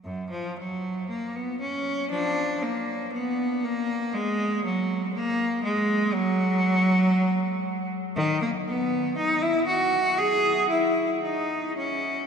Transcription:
\new Staff \with { instrumentName = "Cello" } { \time 4/4 \key fis \major \tempo 4 = 59 fis,16 eis16 fis8 ais16 b16 cis'8 <eis d'>8 ais8 b8 ais8 | gis8 fis8 ais8 gis8 fis4.~ fis16 r16 | \key dis \phrygian dis16 ais16 b8 dis'16 e'16 fis'8 gis'8 e'8 dis'8 cis'8 | }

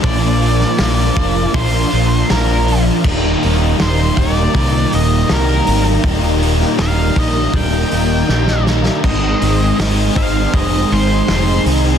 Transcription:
<<
  \new Staff \with { instrumentName = "Ambient pad" } { \time 4/4 \key ees \major \tempo 4 = 80 <d' bes' f'' bes''>1 | <ees' bes' g'' bes''>1~ | <ees' bes' g'' bes''>1 | <ees' c'' aes'' c'''>1 | }
  \new Staff \with { instrumentName = "Lead electric guitar" } { \time 4/4 \key ees \major d''2 c''4 bes'8. r16 | r4 c''8 d''4 ees''8 bes'8. r16 | r4 f''8 ees''8 g''4. r8 | ees''4 r8 f''8 ees''8 c''4 r8 | }
  \new Staff \with { instrumentName = "Overdriven electric guitar" } { \time 4/4 \key ees \major <bes, f bes d' f'>8 <bes d' f'>8 <f bes d' f'>8 <bes d' f'>8 <bes, f bes d' f'>8 <bes d' f'>8 <f bes d' f'>8 <bes d' f'>8 | <ees, bes, ees g bes ees'>8 <ees g bes ees'>8 <ees g bes ees'>8 <ees g bes ees'>8 <ees, bes, ees g bes ees'>8 <ees g bes ees'>8 <ees g bes ees'>8 <ees g bes ees'>8 | <ees, bes, ees g bes ees'>8 <ees g bes ees'>8 <ees g bes ees'>8 <ees g bes ees'>8 <ees, bes, ees g bes ees'>8 <ees g bes ees'>8 <ees g bes ees'>8 <ees g bes ees'>8 | <aes, ees aes c' ees'>8 <aes c' ees'>8 <ees aes c' ees'>8 <aes c' ees'>8 <aes, ees aes c' ees'>8 <aes c' ees'>8 <ees aes c' ees'>8 <aes c' ees'>8 | }
  \new Staff \with { instrumentName = "Overdriven electric guitar" } { \time 4/4 \key ees \major <bes, f bes d' f'>4 <f bes d' f'>8 <bes d' f'>8 <bes, f bes d' f'>4 <f bes d' f'>4 | <ees, bes, ees g bes ees'>4 <ees g bes ees'>8 <ees g bes ees'>8 <ees, bes, ees g bes ees'>4 <ees g bes ees'>4 | <ees, bes, ees g bes ees'>4 <ees g bes ees'>8 <ees g bes ees'>8 <ees, bes, ees g bes ees'>4 <ees g bes ees'>4 | <aes, ees aes c' ees'>4 <ees aes c' ees'>8 <aes c' ees'>8 <aes, ees aes c' ees'>4 <ees aes c' ees'>4 | }
  \new Staff \with { instrumentName = "Picked electric bass" } { \clef bass \time 4/4 \key ees \major bes,,4 bes,,8 f,,8 bes,,8 bes,,8 bes,,4 | ees,,8 ees,,8 ees,,8 ees,,8 c,8 ees,,8 c,8 aes,,8 | ees,,4 ees,,8 bes,,8 ees,,8 ees,,8 bes,,4 | aes,,8 aes,,8 aes,,8 aes,,8 f,,8 aes,,8 f,,8 c,8 | }
  \new DrumStaff \with { instrumentName = "Drums" } \drummode { \time 4/4 <hho bd>8 hho16 sn16 <hho sn>8 <hho bd>8 <hho bd>8 hho8 <hho sn>8 hho8 | <cymc bd>8 hho8 <hho sn>8 <hho bd>8 <hho bd>8 hho8 <hho sn>8 hho8 | <hho bd>8 hho16 sn16 <hho sn>8 <hho bd>8 <hho bd>8 hho8 sn16 sn16 sn16 sn16 | <cymc bd>8 hho8 <hho sn>8 <hho bd>8 <hho bd>8 hho8 <hho sn>8 hho8 | }
>>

